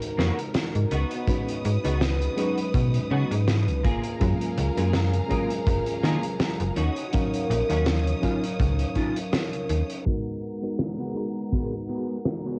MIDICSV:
0, 0, Header, 1, 7, 480
1, 0, Start_track
1, 0, Tempo, 731707
1, 840, Time_signature, 4, 2, 24, 8
1, 8260, End_track
2, 0, Start_track
2, 0, Title_t, "String section"
2, 0, Program_c, 0, 48
2, 0, Note_on_c, 0, 70, 77
2, 583, Note_off_c, 0, 70, 0
2, 604, Note_on_c, 0, 71, 76
2, 604, Note_on_c, 0, 87, 86
2, 2503, Note_off_c, 0, 71, 0
2, 2503, Note_off_c, 0, 87, 0
2, 2520, Note_on_c, 0, 68, 76
2, 2522, Note_on_c, 0, 77, 73
2, 2522, Note_on_c, 0, 82, 89
2, 4421, Note_off_c, 0, 68, 0
2, 4422, Note_off_c, 0, 77, 0
2, 4422, Note_off_c, 0, 82, 0
2, 4439, Note_on_c, 0, 73, 75
2, 4440, Note_on_c, 0, 87, 85
2, 6578, Note_off_c, 0, 73, 0
2, 6578, Note_off_c, 0, 87, 0
2, 6598, Note_on_c, 0, 59, 64
2, 6598, Note_on_c, 0, 78, 80
2, 6599, Note_on_c, 0, 56, 70
2, 6599, Note_on_c, 0, 82, 64
2, 8260, Note_off_c, 0, 56, 0
2, 8260, Note_off_c, 0, 59, 0
2, 8260, Note_off_c, 0, 78, 0
2, 8260, Note_off_c, 0, 82, 0
2, 8260, End_track
3, 0, Start_track
3, 0, Title_t, "Clean electric guitar"
3, 0, Program_c, 1, 27
3, 115, Note_on_c, 1, 58, 112
3, 119, Note_on_c, 1, 59, 99
3, 124, Note_on_c, 1, 66, 126
3, 248, Note_off_c, 1, 58, 0
3, 251, Note_off_c, 1, 59, 0
3, 253, Note_off_c, 1, 66, 0
3, 597, Note_on_c, 1, 59, 88
3, 601, Note_on_c, 1, 63, 85
3, 605, Note_on_c, 1, 66, 97
3, 1079, Note_off_c, 1, 59, 0
3, 1081, Note_off_c, 1, 63, 0
3, 1083, Note_off_c, 1, 66, 0
3, 1206, Note_on_c, 1, 59, 89
3, 1211, Note_on_c, 1, 63, 80
3, 1214, Note_on_c, 1, 66, 98
3, 1317, Note_off_c, 1, 59, 0
3, 1320, Note_off_c, 1, 63, 0
3, 1322, Note_off_c, 1, 66, 0
3, 1556, Note_on_c, 1, 59, 85
3, 1560, Note_on_c, 1, 63, 81
3, 1564, Note_on_c, 1, 66, 95
3, 1689, Note_off_c, 1, 59, 0
3, 1691, Note_off_c, 1, 63, 0
3, 1693, Note_off_c, 1, 66, 0
3, 2036, Note_on_c, 1, 59, 111
3, 2040, Note_on_c, 1, 63, 105
3, 2044, Note_on_c, 1, 66, 121
3, 2169, Note_off_c, 1, 59, 0
3, 2171, Note_off_c, 1, 63, 0
3, 2173, Note_off_c, 1, 66, 0
3, 2515, Note_on_c, 1, 58, 91
3, 2520, Note_on_c, 1, 65, 86
3, 2524, Note_on_c, 1, 68, 95
3, 2998, Note_off_c, 1, 58, 0
3, 3000, Note_off_c, 1, 65, 0
3, 3002, Note_off_c, 1, 68, 0
3, 3127, Note_on_c, 1, 58, 91
3, 3131, Note_on_c, 1, 65, 80
3, 3136, Note_on_c, 1, 68, 95
3, 3238, Note_off_c, 1, 58, 0
3, 3240, Note_off_c, 1, 65, 0
3, 3242, Note_off_c, 1, 68, 0
3, 3475, Note_on_c, 1, 58, 90
3, 3478, Note_on_c, 1, 65, 79
3, 3483, Note_on_c, 1, 68, 100
3, 3609, Note_off_c, 1, 58, 0
3, 3610, Note_off_c, 1, 65, 0
3, 3613, Note_off_c, 1, 68, 0
3, 3953, Note_on_c, 1, 58, 112
3, 3958, Note_on_c, 1, 65, 101
3, 3962, Note_on_c, 1, 68, 126
3, 4088, Note_off_c, 1, 58, 0
3, 4090, Note_off_c, 1, 65, 0
3, 4092, Note_off_c, 1, 68, 0
3, 4435, Note_on_c, 1, 61, 89
3, 4439, Note_on_c, 1, 63, 84
3, 4443, Note_on_c, 1, 66, 100
3, 4917, Note_off_c, 1, 61, 0
3, 4920, Note_off_c, 1, 63, 0
3, 4922, Note_off_c, 1, 66, 0
3, 5046, Note_on_c, 1, 61, 87
3, 5051, Note_on_c, 1, 63, 83
3, 5055, Note_on_c, 1, 66, 98
3, 5157, Note_off_c, 1, 61, 0
3, 5160, Note_off_c, 1, 63, 0
3, 5162, Note_off_c, 1, 66, 0
3, 5397, Note_on_c, 1, 61, 87
3, 5401, Note_on_c, 1, 63, 80
3, 5406, Note_on_c, 1, 65, 94
3, 5529, Note_off_c, 1, 61, 0
3, 5532, Note_off_c, 1, 63, 0
3, 5534, Note_off_c, 1, 65, 0
3, 5877, Note_on_c, 1, 61, 114
3, 5881, Note_on_c, 1, 63, 108
3, 5885, Note_on_c, 1, 65, 127
3, 6009, Note_off_c, 1, 61, 0
3, 6011, Note_off_c, 1, 63, 0
3, 6013, Note_off_c, 1, 65, 0
3, 7205, Note_on_c, 1, 59, 79
3, 7211, Note_on_c, 1, 66, 59
3, 7211, Note_on_c, 1, 68, 67
3, 7214, Note_on_c, 1, 70, 83
3, 7383, Note_off_c, 1, 59, 0
3, 7384, Note_off_c, 1, 66, 0
3, 7385, Note_off_c, 1, 68, 0
3, 7387, Note_off_c, 1, 70, 0
3, 7553, Note_on_c, 1, 59, 107
3, 7559, Note_on_c, 1, 66, 88
3, 7560, Note_on_c, 1, 68, 91
3, 7565, Note_on_c, 1, 70, 99
3, 7688, Note_off_c, 1, 59, 0
3, 7690, Note_off_c, 1, 66, 0
3, 7691, Note_off_c, 1, 68, 0
3, 7693, Note_off_c, 1, 70, 0
3, 7795, Note_on_c, 1, 59, 101
3, 7800, Note_on_c, 1, 66, 87
3, 7800, Note_on_c, 1, 68, 92
3, 7806, Note_on_c, 1, 71, 98
3, 7983, Note_off_c, 1, 59, 0
3, 7984, Note_off_c, 1, 66, 0
3, 7986, Note_off_c, 1, 68, 0
3, 7987, Note_off_c, 1, 71, 0
3, 8167, Note_on_c, 1, 59, 82
3, 8169, Note_on_c, 1, 66, 75
3, 8174, Note_on_c, 1, 68, 70
3, 8175, Note_on_c, 1, 73, 85
3, 8260, Note_off_c, 1, 59, 0
3, 8260, Note_off_c, 1, 66, 0
3, 8260, Note_off_c, 1, 68, 0
3, 8260, Note_off_c, 1, 73, 0
3, 8260, End_track
4, 0, Start_track
4, 0, Title_t, "FM electric piano"
4, 0, Program_c, 2, 5
4, 0, Control_c, 2, 64, 127
4, 0, Note_on_c, 2, 56, 88
4, 0, Note_on_c, 2, 63, 88
4, 0, Note_on_c, 2, 66, 83
4, 0, Note_on_c, 2, 70, 104
4, 583, Note_off_c, 2, 56, 0
4, 588, Note_off_c, 2, 63, 0
4, 590, Note_off_c, 2, 66, 0
4, 592, Note_off_c, 2, 70, 0
4, 610, Control_c, 2, 64, 0
4, 732, Control_c, 2, 64, 127
4, 835, Note_on_c, 2, 56, 81
4, 840, Note_on_c, 2, 61, 77
4, 842, Note_on_c, 2, 63, 77
4, 844, Note_on_c, 2, 66, 74
4, 846, Note_on_c, 2, 71, 94
4, 1177, Note_off_c, 2, 56, 0
4, 1179, Note_off_c, 2, 61, 0
4, 1180, Note_off_c, 2, 63, 0
4, 1182, Note_off_c, 2, 66, 0
4, 1183, Note_off_c, 2, 71, 0
4, 1206, Note_on_c, 2, 56, 80
4, 1208, Note_on_c, 2, 61, 72
4, 1211, Note_on_c, 2, 63, 74
4, 1213, Note_on_c, 2, 66, 74
4, 1217, Note_on_c, 2, 71, 92
4, 1531, Note_off_c, 2, 56, 0
4, 1533, Note_off_c, 2, 61, 0
4, 1534, Note_off_c, 2, 63, 0
4, 1535, Note_off_c, 2, 66, 0
4, 1537, Note_off_c, 2, 71, 0
4, 1551, Note_on_c, 2, 56, 95
4, 1556, Note_on_c, 2, 61, 84
4, 1561, Note_on_c, 2, 63, 87
4, 1566, Note_on_c, 2, 54, 83
4, 1571, Note_on_c, 2, 71, 105
4, 2503, Note_off_c, 2, 56, 0
4, 2505, Note_off_c, 2, 61, 0
4, 2507, Note_off_c, 2, 63, 0
4, 2510, Note_off_c, 2, 54, 0
4, 2512, Note_off_c, 2, 71, 0
4, 2529, Control_c, 2, 64, 0
4, 2661, Control_c, 2, 64, 127
4, 2753, Note_on_c, 2, 56, 88
4, 2757, Note_on_c, 2, 61, 76
4, 2760, Note_on_c, 2, 65, 82
4, 2762, Note_on_c, 2, 54, 80
4, 2764, Note_on_c, 2, 70, 93
4, 3096, Note_off_c, 2, 56, 0
4, 3098, Note_off_c, 2, 61, 0
4, 3099, Note_off_c, 2, 65, 0
4, 3101, Note_off_c, 2, 54, 0
4, 3102, Note_off_c, 2, 70, 0
4, 3125, Note_on_c, 2, 56, 83
4, 3127, Note_on_c, 2, 61, 74
4, 3131, Note_on_c, 2, 65, 73
4, 3133, Note_on_c, 2, 54, 76
4, 3135, Note_on_c, 2, 70, 93
4, 3451, Note_off_c, 2, 56, 0
4, 3452, Note_off_c, 2, 61, 0
4, 3454, Note_off_c, 2, 65, 0
4, 3455, Note_off_c, 2, 54, 0
4, 3456, Note_off_c, 2, 70, 0
4, 3466, Note_on_c, 2, 56, 93
4, 3471, Note_on_c, 2, 61, 86
4, 3477, Note_on_c, 2, 65, 85
4, 3482, Note_on_c, 2, 54, 87
4, 3487, Note_on_c, 2, 70, 102
4, 4420, Note_off_c, 2, 56, 0
4, 4422, Note_off_c, 2, 61, 0
4, 4426, Note_off_c, 2, 65, 0
4, 4428, Note_off_c, 2, 54, 0
4, 4430, Note_off_c, 2, 70, 0
4, 4449, Control_c, 2, 64, 0
4, 4578, Control_c, 2, 64, 127
4, 4676, Note_on_c, 2, 54, 83
4, 4678, Note_on_c, 2, 61, 81
4, 4681, Note_on_c, 2, 63, 78
4, 4684, Note_on_c, 2, 77, 81
4, 4685, Note_on_c, 2, 70, 101
4, 5017, Note_off_c, 2, 54, 0
4, 5018, Note_off_c, 2, 61, 0
4, 5020, Note_off_c, 2, 63, 0
4, 5021, Note_off_c, 2, 77, 0
4, 5022, Note_off_c, 2, 70, 0
4, 5045, Note_on_c, 2, 54, 83
4, 5047, Note_on_c, 2, 61, 74
4, 5050, Note_on_c, 2, 63, 78
4, 5052, Note_on_c, 2, 77, 75
4, 5054, Note_on_c, 2, 70, 89
4, 5371, Note_off_c, 2, 54, 0
4, 5372, Note_off_c, 2, 61, 0
4, 5374, Note_off_c, 2, 63, 0
4, 5374, Note_off_c, 2, 77, 0
4, 5375, Note_off_c, 2, 70, 0
4, 5387, Note_on_c, 2, 54, 96
4, 5392, Note_on_c, 2, 61, 87
4, 5398, Note_on_c, 2, 63, 84
4, 5402, Note_on_c, 2, 77, 90
4, 5407, Note_on_c, 2, 70, 99
4, 6567, Note_off_c, 2, 54, 0
4, 6570, Note_off_c, 2, 61, 0
4, 6573, Note_off_c, 2, 63, 0
4, 6575, Note_off_c, 2, 77, 0
4, 6577, Note_off_c, 2, 70, 0
4, 6594, Note_on_c, 2, 56, 74
4, 6597, Note_on_c, 2, 59, 71
4, 6598, Note_on_c, 2, 63, 70
4, 6602, Note_on_c, 2, 66, 68
4, 6603, Note_on_c, 2, 70, 82
4, 6608, Control_c, 2, 64, 0
4, 6742, Control_c, 2, 64, 127
4, 6937, Note_off_c, 2, 56, 0
4, 6938, Note_off_c, 2, 59, 0
4, 6939, Note_off_c, 2, 63, 0
4, 6940, Note_off_c, 2, 66, 0
4, 6941, Note_off_c, 2, 70, 0
4, 6964, Note_on_c, 2, 56, 73
4, 6967, Note_on_c, 2, 59, 67
4, 6971, Note_on_c, 2, 63, 66
4, 6972, Note_on_c, 2, 66, 65
4, 6975, Note_on_c, 2, 70, 80
4, 7291, Note_off_c, 2, 56, 0
4, 7292, Note_off_c, 2, 59, 0
4, 7294, Note_off_c, 2, 63, 0
4, 7294, Note_off_c, 2, 66, 0
4, 7296, Note_off_c, 2, 70, 0
4, 7308, Note_on_c, 2, 56, 81
4, 7312, Note_on_c, 2, 59, 75
4, 7318, Note_on_c, 2, 63, 77
4, 7324, Note_on_c, 2, 66, 74
4, 7327, Note_on_c, 2, 82, 92
4, 8260, Note_off_c, 2, 56, 0
4, 8260, Note_off_c, 2, 59, 0
4, 8260, Note_off_c, 2, 63, 0
4, 8260, Note_off_c, 2, 66, 0
4, 8260, Note_off_c, 2, 82, 0
4, 8260, End_track
5, 0, Start_track
5, 0, Title_t, "FM bass"
5, 0, Program_c, 3, 39
5, 122, Note_on_c, 3, 41, 97
5, 207, Note_off_c, 3, 41, 0
5, 494, Note_on_c, 3, 44, 79
5, 564, Note_off_c, 3, 44, 0
5, 602, Note_on_c, 3, 37, 92
5, 687, Note_off_c, 3, 37, 0
5, 1081, Note_on_c, 3, 44, 95
5, 1167, Note_off_c, 3, 44, 0
5, 1211, Note_on_c, 3, 37, 93
5, 1500, Note_off_c, 3, 37, 0
5, 1799, Note_on_c, 3, 47, 82
5, 1964, Note_off_c, 3, 47, 0
5, 2040, Note_on_c, 3, 49, 103
5, 2126, Note_off_c, 3, 49, 0
5, 2171, Note_on_c, 3, 44, 107
5, 2410, Note_on_c, 3, 37, 79
5, 2420, Note_off_c, 3, 44, 0
5, 2523, Note_on_c, 3, 30, 86
5, 2532, Note_off_c, 3, 37, 0
5, 2607, Note_off_c, 3, 30, 0
5, 2762, Note_on_c, 3, 42, 103
5, 2847, Note_off_c, 3, 42, 0
5, 3000, Note_on_c, 3, 37, 98
5, 3086, Note_off_c, 3, 37, 0
5, 3131, Note_on_c, 3, 42, 88
5, 3420, Note_off_c, 3, 42, 0
5, 3719, Note_on_c, 3, 30, 93
5, 3805, Note_off_c, 3, 30, 0
5, 3959, Note_on_c, 3, 51, 96
5, 4045, Note_off_c, 3, 51, 0
5, 4330, Note_on_c, 3, 30, 82
5, 4402, Note_off_c, 3, 30, 0
5, 4440, Note_on_c, 3, 39, 91
5, 4526, Note_off_c, 3, 39, 0
5, 4921, Note_on_c, 3, 34, 95
5, 5007, Note_off_c, 3, 34, 0
5, 5053, Note_on_c, 3, 39, 92
5, 5341, Note_off_c, 3, 39, 0
5, 5641, Note_on_c, 3, 37, 83
5, 5805, Note_off_c, 3, 37, 0
5, 6361, Note_on_c, 3, 39, 80
5, 6446, Note_off_c, 3, 39, 0
5, 8260, End_track
6, 0, Start_track
6, 0, Title_t, "Muted clean electric guitar strokes"
6, 356, Note_on_c, 9, 29, 88
6, 421, Note_off_c, 9, 29, 0
6, 488, Note_on_c, 9, 29, 34
6, 554, Note_off_c, 9, 29, 0
6, 1447, Note_on_c, 9, 29, 34
6, 1512, Note_off_c, 9, 29, 0
6, 1797, Note_on_c, 9, 29, 33
6, 1862, Note_off_c, 9, 29, 0
6, 2276, Note_on_c, 9, 29, 88
6, 2341, Note_off_c, 9, 29, 0
6, 2409, Note_on_c, 9, 29, 34
6, 2474, Note_off_c, 9, 29, 0
6, 3366, Note_on_c, 9, 29, 32
6, 3432, Note_off_c, 9, 29, 0
6, 3715, Note_on_c, 9, 29, 34
6, 3781, Note_off_c, 9, 29, 0
6, 4195, Note_on_c, 9, 29, 92
6, 4260, Note_off_c, 9, 29, 0
6, 4326, Note_on_c, 9, 29, 36
6, 4392, Note_off_c, 9, 29, 0
6, 5288, Note_on_c, 9, 29, 33
6, 5354, Note_off_c, 9, 29, 0
6, 5637, Note_on_c, 9, 29, 33
6, 5702, Note_off_c, 9, 29, 0
6, 6116, Note_on_c, 9, 29, 88
6, 6181, Note_off_c, 9, 29, 0
6, 6247, Note_on_c, 9, 29, 35
6, 6313, Note_off_c, 9, 29, 0
6, 8260, End_track
7, 0, Start_track
7, 0, Title_t, "Drums"
7, 13, Note_on_c, 9, 42, 52
7, 78, Note_off_c, 9, 42, 0
7, 124, Note_on_c, 9, 38, 53
7, 190, Note_off_c, 9, 38, 0
7, 254, Note_on_c, 9, 42, 50
7, 320, Note_off_c, 9, 42, 0
7, 357, Note_on_c, 9, 42, 97
7, 360, Note_on_c, 9, 38, 121
7, 422, Note_off_c, 9, 42, 0
7, 426, Note_off_c, 9, 38, 0
7, 493, Note_on_c, 9, 42, 47
7, 559, Note_off_c, 9, 42, 0
7, 598, Note_on_c, 9, 42, 65
7, 664, Note_off_c, 9, 42, 0
7, 728, Note_on_c, 9, 42, 47
7, 793, Note_off_c, 9, 42, 0
7, 837, Note_on_c, 9, 36, 106
7, 841, Note_on_c, 9, 42, 92
7, 902, Note_off_c, 9, 36, 0
7, 907, Note_off_c, 9, 42, 0
7, 974, Note_on_c, 9, 42, 58
7, 1039, Note_off_c, 9, 42, 0
7, 1081, Note_on_c, 9, 42, 67
7, 1147, Note_off_c, 9, 42, 0
7, 1210, Note_on_c, 9, 42, 51
7, 1276, Note_off_c, 9, 42, 0
7, 1320, Note_on_c, 9, 38, 106
7, 1325, Note_on_c, 9, 42, 98
7, 1385, Note_off_c, 9, 38, 0
7, 1391, Note_off_c, 9, 42, 0
7, 1455, Note_on_c, 9, 42, 51
7, 1520, Note_off_c, 9, 42, 0
7, 1558, Note_on_c, 9, 42, 69
7, 1624, Note_off_c, 9, 42, 0
7, 1690, Note_on_c, 9, 42, 50
7, 1755, Note_off_c, 9, 42, 0
7, 1798, Note_on_c, 9, 36, 119
7, 1798, Note_on_c, 9, 42, 87
7, 1864, Note_off_c, 9, 36, 0
7, 1864, Note_off_c, 9, 42, 0
7, 1928, Note_on_c, 9, 42, 53
7, 1994, Note_off_c, 9, 42, 0
7, 2174, Note_on_c, 9, 42, 54
7, 2240, Note_off_c, 9, 42, 0
7, 2281, Note_on_c, 9, 38, 101
7, 2281, Note_on_c, 9, 42, 90
7, 2347, Note_off_c, 9, 38, 0
7, 2347, Note_off_c, 9, 42, 0
7, 2414, Note_on_c, 9, 42, 45
7, 2480, Note_off_c, 9, 42, 0
7, 2522, Note_on_c, 9, 36, 102
7, 2522, Note_on_c, 9, 42, 69
7, 2587, Note_off_c, 9, 42, 0
7, 2588, Note_off_c, 9, 36, 0
7, 2646, Note_on_c, 9, 42, 48
7, 2712, Note_off_c, 9, 42, 0
7, 2760, Note_on_c, 9, 42, 91
7, 2762, Note_on_c, 9, 36, 113
7, 2825, Note_off_c, 9, 42, 0
7, 2828, Note_off_c, 9, 36, 0
7, 2893, Note_on_c, 9, 42, 48
7, 2959, Note_off_c, 9, 42, 0
7, 3001, Note_on_c, 9, 42, 72
7, 3067, Note_off_c, 9, 42, 0
7, 3131, Note_on_c, 9, 42, 57
7, 3197, Note_off_c, 9, 42, 0
7, 3237, Note_on_c, 9, 38, 106
7, 3239, Note_on_c, 9, 42, 96
7, 3302, Note_off_c, 9, 38, 0
7, 3304, Note_off_c, 9, 42, 0
7, 3368, Note_on_c, 9, 42, 56
7, 3434, Note_off_c, 9, 42, 0
7, 3481, Note_on_c, 9, 42, 72
7, 3483, Note_on_c, 9, 36, 58
7, 3547, Note_off_c, 9, 42, 0
7, 3549, Note_off_c, 9, 36, 0
7, 3610, Note_on_c, 9, 42, 54
7, 3676, Note_off_c, 9, 42, 0
7, 3718, Note_on_c, 9, 36, 116
7, 3718, Note_on_c, 9, 42, 91
7, 3783, Note_off_c, 9, 42, 0
7, 3784, Note_off_c, 9, 36, 0
7, 3846, Note_on_c, 9, 42, 48
7, 3912, Note_off_c, 9, 42, 0
7, 3959, Note_on_c, 9, 38, 53
7, 4024, Note_off_c, 9, 38, 0
7, 4088, Note_on_c, 9, 42, 57
7, 4154, Note_off_c, 9, 42, 0
7, 4197, Note_on_c, 9, 42, 88
7, 4198, Note_on_c, 9, 38, 111
7, 4262, Note_off_c, 9, 42, 0
7, 4263, Note_off_c, 9, 38, 0
7, 4329, Note_on_c, 9, 42, 58
7, 4395, Note_off_c, 9, 42, 0
7, 4436, Note_on_c, 9, 42, 75
7, 4502, Note_off_c, 9, 42, 0
7, 4568, Note_on_c, 9, 42, 50
7, 4634, Note_off_c, 9, 42, 0
7, 4677, Note_on_c, 9, 42, 87
7, 4687, Note_on_c, 9, 36, 107
7, 4743, Note_off_c, 9, 42, 0
7, 4752, Note_off_c, 9, 36, 0
7, 4814, Note_on_c, 9, 42, 54
7, 4880, Note_off_c, 9, 42, 0
7, 4928, Note_on_c, 9, 42, 81
7, 4993, Note_off_c, 9, 42, 0
7, 5051, Note_on_c, 9, 42, 51
7, 5117, Note_off_c, 9, 42, 0
7, 5158, Note_on_c, 9, 42, 95
7, 5160, Note_on_c, 9, 38, 110
7, 5223, Note_off_c, 9, 42, 0
7, 5226, Note_off_c, 9, 38, 0
7, 5296, Note_on_c, 9, 42, 52
7, 5361, Note_off_c, 9, 42, 0
7, 5400, Note_on_c, 9, 42, 70
7, 5402, Note_on_c, 9, 36, 54
7, 5466, Note_off_c, 9, 42, 0
7, 5468, Note_off_c, 9, 36, 0
7, 5535, Note_on_c, 9, 42, 53
7, 5600, Note_off_c, 9, 42, 0
7, 5640, Note_on_c, 9, 36, 114
7, 5641, Note_on_c, 9, 42, 85
7, 5706, Note_off_c, 9, 36, 0
7, 5707, Note_off_c, 9, 42, 0
7, 5767, Note_on_c, 9, 42, 55
7, 5832, Note_off_c, 9, 42, 0
7, 5874, Note_on_c, 9, 42, 45
7, 5876, Note_on_c, 9, 36, 53
7, 5939, Note_off_c, 9, 42, 0
7, 5942, Note_off_c, 9, 36, 0
7, 6011, Note_on_c, 9, 42, 58
7, 6077, Note_off_c, 9, 42, 0
7, 6120, Note_on_c, 9, 42, 100
7, 6121, Note_on_c, 9, 38, 114
7, 6185, Note_off_c, 9, 42, 0
7, 6186, Note_off_c, 9, 38, 0
7, 6252, Note_on_c, 9, 42, 48
7, 6318, Note_off_c, 9, 42, 0
7, 6359, Note_on_c, 9, 42, 76
7, 6424, Note_off_c, 9, 42, 0
7, 6492, Note_on_c, 9, 42, 54
7, 6557, Note_off_c, 9, 42, 0
7, 6597, Note_on_c, 9, 54, 22
7, 6602, Note_on_c, 9, 36, 108
7, 6662, Note_off_c, 9, 54, 0
7, 6667, Note_off_c, 9, 36, 0
7, 6838, Note_on_c, 9, 54, 54
7, 6903, Note_off_c, 9, 54, 0
7, 6968, Note_on_c, 9, 54, 32
7, 7033, Note_off_c, 9, 54, 0
7, 7076, Note_on_c, 9, 38, 105
7, 7141, Note_off_c, 9, 38, 0
7, 7320, Note_on_c, 9, 54, 51
7, 7386, Note_off_c, 9, 54, 0
7, 7449, Note_on_c, 9, 54, 37
7, 7514, Note_off_c, 9, 54, 0
7, 7557, Note_on_c, 9, 54, 25
7, 7560, Note_on_c, 9, 36, 96
7, 7623, Note_off_c, 9, 54, 0
7, 7625, Note_off_c, 9, 36, 0
7, 7796, Note_on_c, 9, 54, 49
7, 7861, Note_off_c, 9, 54, 0
7, 7927, Note_on_c, 9, 54, 35
7, 7992, Note_off_c, 9, 54, 0
7, 8038, Note_on_c, 9, 38, 103
7, 8038, Note_on_c, 9, 54, 24
7, 8103, Note_off_c, 9, 54, 0
7, 8104, Note_off_c, 9, 38, 0
7, 8260, End_track
0, 0, End_of_file